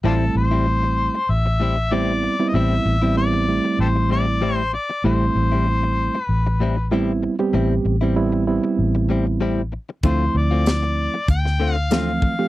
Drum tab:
HH |----------------|----------------|----------------|----------------|
SD |----------------|----------------|----------------|----------------|
BD |----------------|----------------|----------------|----------------|

HH |x---x---x---x---|
SD |----o----o--o---|
BD |o-------o-----o-|